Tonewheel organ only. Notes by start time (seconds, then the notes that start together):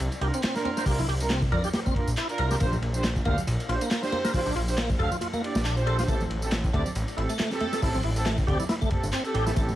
0.22 G4
0.34 C4
0.43 C4
0.65 C4
0.77 C5
0.86 G4
0.99 E4
1.08 G4
1.30 C4
1.52 A#4
1.64 G4
1.74 G4
1.86 C4
2.17 E4
2.39 A#4
2.51 G4
2.60 A#3
3.25 A#3
3.69 F4
3.81 A#3
3.91 A#3
4.12 A#3
4.24 A#4
4.34 F4
4.46 D4
4.56 F4
4.78 A#3
4.99 A4
5.11 F4
5.21 F4
5.33 A#3
5.64 D4
5.87 A4
5.99 F4
6.08 A3
6.73 A3
7.17 E4
7.29 A3
7.39 A3
7.61 A3
7.73 A4
7.82 E4
7.95 C4
8.04 E4
8.26 A3
8.47 G4
8.60 E4
8.69 E4
8.81 A3
9.12 C4
9.34 G4
9.46 E4
9.56 A3